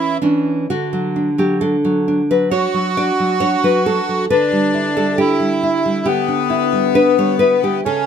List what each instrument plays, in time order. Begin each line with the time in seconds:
Already playing: nylon-string guitar E3 C#4, bandoneon E4
0.22 nylon-string guitar E3 C#4 D4
0.70 nylon-string guitar D3 F#4
0.93 nylon-string guitar F#3
1.16 nylon-string guitar D4
1.38 nylon-string guitar F#3 G4
1.61 nylon-string guitar D4 A4
1.85 nylon-string guitar F#3
2.08 nylon-string guitar D4
2.31 nylon-string guitar F#3 B4
2.51 nylon-string guitar D4 C#5, bandoneon F#4
2.74 nylon-string guitar F#3
2.97 nylon-string guitar D4 D5
3.20 nylon-string guitar F#3
3.40 nylon-string guitar D4 C#5
3.64 nylon-string guitar F#3 B4
3.86 nylon-string guitar D4 A4
4.09 nylon-string guitar F#3
4.30 nylon-string guitar D3 B4, bandoneon D4
4.52 nylon-string guitar G3
4.74 nylon-string guitar E4
4.96 nylon-string guitar G3 A4
5.18 nylon-string guitar D4 G4, bandoneon E4
5.40 nylon-string guitar G3
5.63 nylon-string guitar E4
5.86 nylon-string guitar G3
6.06 nylon-string guitar D3 G4, bandoneon B3
6.28 nylon-string guitar D4
6.50 nylon-string guitar E4
6.73 nylon-string guitar G3
6.95 nylon-string guitar D4 B4
7.18 nylon-string guitar G3 C#5
7.39 nylon-string guitar E4 B4
7.63 nylon-string guitar G3 G4
7.85 nylon-string guitar C#3 A4, bandoneon C#4